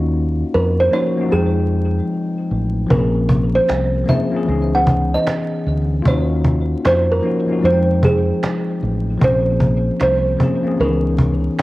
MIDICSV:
0, 0, Header, 1, 6, 480
1, 0, Start_track
1, 0, Key_signature, -5, "minor"
1, 0, Tempo, 789474
1, 1763, Time_signature, 4, 2, 24, 8
1, 7066, End_track
2, 0, Start_track
2, 0, Title_t, "Kalimba"
2, 0, Program_c, 0, 108
2, 329, Note_on_c, 0, 70, 84
2, 397, Note_off_c, 0, 70, 0
2, 486, Note_on_c, 0, 72, 88
2, 566, Note_on_c, 0, 73, 98
2, 570, Note_off_c, 0, 72, 0
2, 803, Note_on_c, 0, 68, 86
2, 812, Note_off_c, 0, 73, 0
2, 1258, Note_off_c, 0, 68, 0
2, 1768, Note_on_c, 0, 70, 81
2, 2160, Note_on_c, 0, 72, 81
2, 2170, Note_off_c, 0, 70, 0
2, 2488, Note_on_c, 0, 76, 89
2, 2495, Note_off_c, 0, 72, 0
2, 2887, Note_on_c, 0, 78, 87
2, 2890, Note_off_c, 0, 76, 0
2, 3105, Note_off_c, 0, 78, 0
2, 3128, Note_on_c, 0, 75, 95
2, 3427, Note_off_c, 0, 75, 0
2, 3695, Note_on_c, 0, 73, 100
2, 4175, Note_on_c, 0, 72, 103
2, 4183, Note_off_c, 0, 73, 0
2, 4312, Note_off_c, 0, 72, 0
2, 4326, Note_on_c, 0, 70, 84
2, 4651, Note_on_c, 0, 72, 101
2, 4657, Note_off_c, 0, 70, 0
2, 4892, Note_on_c, 0, 68, 79
2, 4894, Note_off_c, 0, 72, 0
2, 5343, Note_off_c, 0, 68, 0
2, 5619, Note_on_c, 0, 72, 113
2, 6067, Note_off_c, 0, 72, 0
2, 6096, Note_on_c, 0, 72, 99
2, 6545, Note_off_c, 0, 72, 0
2, 6571, Note_on_c, 0, 70, 92
2, 7066, Note_off_c, 0, 70, 0
2, 7066, End_track
3, 0, Start_track
3, 0, Title_t, "Tine electric piano"
3, 0, Program_c, 1, 4
3, 0, Control_c, 1, 64, 127
3, 0, Note_on_c, 1, 58, 66
3, 0, Note_on_c, 1, 61, 62
3, 0, Note_on_c, 1, 63, 77
3, 0, Note_on_c, 1, 65, 75
3, 0, Note_on_c, 1, 66, 87
3, 507, Note_off_c, 1, 65, 0
3, 512, Note_off_c, 1, 58, 0
3, 516, Note_off_c, 1, 61, 0
3, 522, Note_off_c, 1, 63, 0
3, 527, Note_off_c, 1, 66, 0
3, 544, Note_on_c, 1, 53, 81
3, 555, Note_on_c, 1, 58, 65
3, 563, Note_on_c, 1, 61, 64
3, 573, Note_on_c, 1, 63, 68
3, 582, Note_on_c, 1, 66, 82
3, 694, Note_off_c, 1, 53, 0
3, 699, Note_off_c, 1, 58, 0
3, 703, Note_off_c, 1, 61, 0
3, 705, Note_on_c, 1, 53, 72
3, 708, Note_off_c, 1, 63, 0
3, 713, Note_off_c, 1, 66, 0
3, 714, Note_on_c, 1, 58, 72
3, 724, Note_on_c, 1, 61, 66
3, 736, Note_on_c, 1, 63, 71
3, 745, Note_on_c, 1, 66, 84
3, 765, Note_off_c, 1, 53, 0
3, 773, Note_on_c, 1, 53, 73
3, 782, Note_on_c, 1, 55, 47
3, 794, Note_off_c, 1, 63, 0
3, 794, Note_on_c, 1, 60, 62
3, 801, Note_on_c, 1, 63, 66
3, 802, Note_off_c, 1, 58, 0
3, 807, Note_off_c, 1, 61, 0
3, 810, Control_c, 1, 64, 0
3, 812, Note_on_c, 1, 79, 83
3, 818, Note_off_c, 1, 66, 0
3, 820, Note_on_c, 1, 56, 66
3, 843, Note_off_c, 1, 55, 0
3, 911, Control_c, 1, 64, 127
3, 1688, Note_off_c, 1, 53, 0
3, 1698, Note_off_c, 1, 60, 0
3, 1702, Note_off_c, 1, 63, 0
3, 1708, Note_off_c, 1, 79, 0
3, 1712, Note_off_c, 1, 56, 0
3, 1742, Note_on_c, 1, 53, 77
3, 1754, Note_on_c, 1, 58, 73
3, 1760, Note_on_c, 1, 60, 66
3, 1770, Control_c, 1, 64, 0
3, 1771, Note_on_c, 1, 61, 71
3, 1782, Note_on_c, 1, 68, 82
3, 1865, Control_c, 1, 64, 127
3, 2428, Note_off_c, 1, 53, 0
3, 2433, Note_off_c, 1, 58, 0
3, 2436, Note_off_c, 1, 60, 0
3, 2442, Note_off_c, 1, 61, 0
3, 2447, Note_off_c, 1, 68, 0
3, 2458, Note_on_c, 1, 53, 69
3, 2468, Note_on_c, 1, 58, 74
3, 2478, Note_on_c, 1, 60, 65
3, 2486, Note_on_c, 1, 61, 66
3, 2497, Note_on_c, 1, 68, 78
3, 2610, Note_off_c, 1, 53, 0
3, 2616, Note_off_c, 1, 58, 0
3, 2617, Note_on_c, 1, 53, 85
3, 2620, Note_off_c, 1, 60, 0
3, 2625, Note_off_c, 1, 61, 0
3, 2626, Note_on_c, 1, 58, 66
3, 2630, Note_off_c, 1, 68, 0
3, 2636, Note_on_c, 1, 60, 67
3, 2646, Note_on_c, 1, 61, 71
3, 2655, Note_on_c, 1, 68, 94
3, 2708, Note_on_c, 1, 52, 81
3, 2714, Note_off_c, 1, 53, 0
3, 2717, Note_on_c, 1, 59, 71
3, 2718, Note_off_c, 1, 58, 0
3, 2720, Note_off_c, 1, 61, 0
3, 2723, Note_off_c, 1, 60, 0
3, 2727, Note_on_c, 1, 61, 69
3, 2732, Note_off_c, 1, 68, 0
3, 2732, Control_c, 1, 64, 0
3, 2738, Note_on_c, 1, 63, 66
3, 2747, Note_on_c, 1, 68, 87
3, 2837, Control_c, 1, 64, 127
3, 3615, Note_off_c, 1, 52, 0
3, 3620, Note_off_c, 1, 59, 0
3, 3625, Note_off_c, 1, 61, 0
3, 3630, Note_off_c, 1, 63, 0
3, 3635, Note_off_c, 1, 68, 0
3, 3663, Note_on_c, 1, 65, 94
3, 3673, Note_on_c, 1, 58, 76
3, 3685, Note_on_c, 1, 61, 84
3, 3690, Control_c, 1, 64, 0
3, 3694, Note_on_c, 1, 63, 82
3, 3703, Note_on_c, 1, 66, 97
3, 3798, Control_c, 1, 64, 127
3, 4348, Note_off_c, 1, 65, 0
3, 4353, Note_off_c, 1, 58, 0
3, 4359, Note_off_c, 1, 61, 0
3, 4363, Note_off_c, 1, 63, 0
3, 4368, Note_off_c, 1, 66, 0
3, 4382, Note_on_c, 1, 53, 74
3, 4390, Note_on_c, 1, 58, 72
3, 4400, Note_on_c, 1, 61, 73
3, 4409, Note_on_c, 1, 63, 71
3, 4419, Note_on_c, 1, 66, 84
3, 4530, Note_off_c, 1, 53, 0
3, 4537, Note_off_c, 1, 58, 0
3, 4537, Note_on_c, 1, 53, 79
3, 4542, Note_off_c, 1, 61, 0
3, 4546, Note_off_c, 1, 63, 0
3, 4546, Note_on_c, 1, 58, 71
3, 4551, Note_off_c, 1, 66, 0
3, 4556, Note_on_c, 1, 61, 70
3, 4565, Note_on_c, 1, 63, 70
3, 4576, Note_on_c, 1, 66, 83
3, 4610, Note_off_c, 1, 53, 0
3, 4617, Note_on_c, 1, 53, 76
3, 4627, Note_on_c, 1, 56, 67
3, 4635, Note_on_c, 1, 60, 64
3, 4638, Note_off_c, 1, 58, 0
3, 4638, Note_off_c, 1, 63, 0
3, 4643, Note_off_c, 1, 61, 0
3, 4646, Note_on_c, 1, 63, 69
3, 4648, Note_off_c, 1, 66, 0
3, 4650, Control_c, 1, 64, 0
3, 4655, Note_on_c, 1, 66, 64
3, 4695, Note_on_c, 1, 79, 76
3, 4699, Note_off_c, 1, 66, 0
3, 4757, Control_c, 1, 64, 127
3, 5530, Note_off_c, 1, 53, 0
3, 5535, Note_off_c, 1, 56, 0
3, 5539, Note_off_c, 1, 60, 0
3, 5544, Note_off_c, 1, 63, 0
3, 5569, Note_off_c, 1, 79, 0
3, 5581, Note_on_c, 1, 53, 79
3, 5590, Note_on_c, 1, 58, 74
3, 5599, Note_on_c, 1, 60, 68
3, 5607, Note_on_c, 1, 61, 69
3, 5612, Control_c, 1, 64, 0
3, 5619, Note_on_c, 1, 68, 84
3, 5729, Control_c, 1, 64, 127
3, 6267, Note_off_c, 1, 53, 0
3, 6271, Note_off_c, 1, 58, 0
3, 6276, Note_off_c, 1, 60, 0
3, 6280, Note_off_c, 1, 61, 0
3, 6286, Note_off_c, 1, 68, 0
3, 6305, Note_on_c, 1, 53, 72
3, 6316, Note_on_c, 1, 58, 68
3, 6324, Note_on_c, 1, 60, 63
3, 6336, Note_on_c, 1, 61, 69
3, 6344, Note_on_c, 1, 68, 83
3, 6447, Note_off_c, 1, 53, 0
3, 6454, Note_on_c, 1, 53, 79
3, 6459, Note_off_c, 1, 58, 0
3, 6463, Note_off_c, 1, 60, 0
3, 6465, Note_on_c, 1, 58, 79
3, 6469, Note_off_c, 1, 61, 0
3, 6473, Note_off_c, 1, 68, 0
3, 6473, Note_on_c, 1, 60, 72
3, 6485, Note_on_c, 1, 61, 64
3, 6493, Note_on_c, 1, 68, 86
3, 6552, Note_off_c, 1, 53, 0
3, 6555, Note_on_c, 1, 51, 58
3, 6558, Note_off_c, 1, 58, 0
3, 6561, Note_off_c, 1, 60, 0
3, 6563, Note_on_c, 1, 59, 72
3, 6567, Note_off_c, 1, 61, 0
3, 6570, Control_c, 1, 64, 0
3, 6572, Note_off_c, 1, 68, 0
3, 6574, Note_on_c, 1, 61, 71
3, 6584, Note_on_c, 1, 63, 64
3, 6593, Note_on_c, 1, 52, 77
3, 6593, Note_on_c, 1, 68, 83
3, 6609, Note_off_c, 1, 51, 0
3, 6678, Control_c, 1, 64, 127
3, 7066, Note_off_c, 1, 52, 0
3, 7066, Note_off_c, 1, 59, 0
3, 7066, Note_off_c, 1, 61, 0
3, 7066, Note_off_c, 1, 63, 0
3, 7066, Note_off_c, 1, 68, 0
3, 7066, End_track
4, 0, Start_track
4, 0, Title_t, "Fingered electric bass"
4, 0, Program_c, 2, 33
4, 0, Note_on_c, 2, 39, 89
4, 256, Note_off_c, 2, 39, 0
4, 331, Note_on_c, 2, 41, 97
4, 532, Note_off_c, 2, 41, 0
4, 806, Note_on_c, 2, 41, 91
4, 1214, Note_off_c, 2, 41, 0
4, 1525, Note_on_c, 2, 33, 89
4, 1729, Note_off_c, 2, 33, 0
4, 1766, Note_on_c, 2, 34, 104
4, 2174, Note_off_c, 2, 34, 0
4, 2247, Note_on_c, 2, 36, 103
4, 2450, Note_off_c, 2, 36, 0
4, 2727, Note_on_c, 2, 37, 102
4, 3135, Note_off_c, 2, 37, 0
4, 3446, Note_on_c, 2, 38, 95
4, 3649, Note_off_c, 2, 38, 0
4, 3686, Note_on_c, 2, 39, 96
4, 4094, Note_off_c, 2, 39, 0
4, 4166, Note_on_c, 2, 41, 99
4, 4369, Note_off_c, 2, 41, 0
4, 4642, Note_on_c, 2, 41, 96
4, 5052, Note_off_c, 2, 41, 0
4, 5366, Note_on_c, 2, 33, 92
4, 5569, Note_off_c, 2, 33, 0
4, 5604, Note_on_c, 2, 34, 101
4, 6013, Note_off_c, 2, 34, 0
4, 6088, Note_on_c, 2, 36, 104
4, 6291, Note_off_c, 2, 36, 0
4, 6566, Note_on_c, 2, 37, 105
4, 6974, Note_off_c, 2, 37, 0
4, 7066, End_track
5, 0, Start_track
5, 0, Title_t, "Cajon"
5, 1764, Note_on_c, 9, 36, 122
5, 1825, Note_off_c, 9, 36, 0
5, 1911, Note_on_c, 9, 38, 27
5, 1971, Note_off_c, 9, 38, 0
5, 2000, Note_on_c, 9, 36, 96
5, 2061, Note_off_c, 9, 36, 0
5, 2246, Note_on_c, 9, 38, 102
5, 2307, Note_off_c, 9, 38, 0
5, 2409, Note_on_c, 9, 38, 24
5, 2470, Note_off_c, 9, 38, 0
5, 2486, Note_on_c, 9, 36, 96
5, 2547, Note_off_c, 9, 36, 0
5, 2713, Note_on_c, 9, 38, 33
5, 2773, Note_off_c, 9, 38, 0
5, 2864, Note_on_c, 9, 38, 24
5, 2924, Note_off_c, 9, 38, 0
5, 2961, Note_on_c, 9, 36, 105
5, 3022, Note_off_c, 9, 36, 0
5, 3097, Note_on_c, 9, 38, 21
5, 3158, Note_off_c, 9, 38, 0
5, 3206, Note_on_c, 9, 38, 112
5, 3267, Note_off_c, 9, 38, 0
5, 3345, Note_on_c, 9, 38, 25
5, 3406, Note_off_c, 9, 38, 0
5, 3430, Note_on_c, 9, 38, 35
5, 3491, Note_off_c, 9, 38, 0
5, 3682, Note_on_c, 9, 36, 121
5, 3742, Note_off_c, 9, 36, 0
5, 3827, Note_on_c, 9, 38, 25
5, 3888, Note_off_c, 9, 38, 0
5, 3918, Note_on_c, 9, 36, 95
5, 3979, Note_off_c, 9, 36, 0
5, 4165, Note_on_c, 9, 38, 116
5, 4225, Note_off_c, 9, 38, 0
5, 4326, Note_on_c, 9, 38, 26
5, 4387, Note_off_c, 9, 38, 0
5, 4392, Note_on_c, 9, 38, 33
5, 4453, Note_off_c, 9, 38, 0
5, 4633, Note_on_c, 9, 38, 32
5, 4693, Note_off_c, 9, 38, 0
5, 4786, Note_on_c, 9, 38, 24
5, 4847, Note_off_c, 9, 38, 0
5, 4881, Note_on_c, 9, 36, 104
5, 4942, Note_off_c, 9, 36, 0
5, 5020, Note_on_c, 9, 38, 21
5, 5081, Note_off_c, 9, 38, 0
5, 5129, Note_on_c, 9, 38, 110
5, 5189, Note_off_c, 9, 38, 0
5, 5267, Note_on_c, 9, 38, 23
5, 5328, Note_off_c, 9, 38, 0
5, 5350, Note_on_c, 9, 38, 35
5, 5411, Note_off_c, 9, 38, 0
5, 5602, Note_on_c, 9, 36, 115
5, 5663, Note_off_c, 9, 36, 0
5, 5749, Note_on_c, 9, 38, 26
5, 5810, Note_off_c, 9, 38, 0
5, 5838, Note_on_c, 9, 36, 96
5, 5899, Note_off_c, 9, 36, 0
5, 6084, Note_on_c, 9, 38, 115
5, 6145, Note_off_c, 9, 38, 0
5, 6245, Note_on_c, 9, 38, 26
5, 6306, Note_off_c, 9, 38, 0
5, 6324, Note_on_c, 9, 36, 98
5, 6385, Note_off_c, 9, 36, 0
5, 6550, Note_on_c, 9, 38, 33
5, 6610, Note_off_c, 9, 38, 0
5, 6703, Note_on_c, 9, 38, 23
5, 6764, Note_off_c, 9, 38, 0
5, 6800, Note_on_c, 9, 36, 102
5, 6861, Note_off_c, 9, 36, 0
5, 6936, Note_on_c, 9, 38, 20
5, 6996, Note_off_c, 9, 38, 0
5, 7046, Note_on_c, 9, 38, 111
5, 7066, Note_off_c, 9, 38, 0
5, 7066, End_track
6, 0, Start_track
6, 0, Title_t, "Drums"
6, 2242, Note_on_c, 9, 26, 62
6, 2303, Note_off_c, 9, 26, 0
6, 3204, Note_on_c, 9, 26, 83
6, 3264, Note_off_c, 9, 26, 0
6, 4162, Note_on_c, 9, 26, 60
6, 4223, Note_off_c, 9, 26, 0
6, 5125, Note_on_c, 9, 26, 79
6, 5186, Note_off_c, 9, 26, 0
6, 6079, Note_on_c, 9, 26, 59
6, 6140, Note_off_c, 9, 26, 0
6, 7043, Note_on_c, 9, 26, 78
6, 7066, Note_off_c, 9, 26, 0
6, 7066, End_track
0, 0, End_of_file